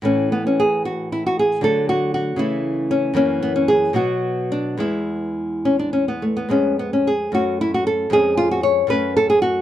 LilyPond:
\new Staff \with { instrumentName = "Nylon-string guitar" } { \time 6/8 \key a \major \tempo 4. = 76 << { cis'8 b16 cis'16 gis'8 fis'8 e'16 fis'16 gis'8 | a'8 fis'8 fis'8 e'4 cis'8 | cis'8 b16 cis'16 gis'8 fis'4 d'8 | e'4. cis'16 d'16 cis'16 b16 a16 b16 |
\key fis \minor cis'8 ces'16 cis'16 aes'8 fis'8 e'16 fis'16 a'8 | gis'8 eis'16 fis'16 cis''8 b'8 a'16 gis'16 fis'8 | } \\ { <a, e a>2. | <d fis a>4. <cis e a>4. | <fis, e ais>4. <b, fis b>4. | <e, gis b>2. |
<f, aes ces'>4. <fis, a cis'>4. | <eis, gis cis'>4. <fis, a cis'>4. | } >> }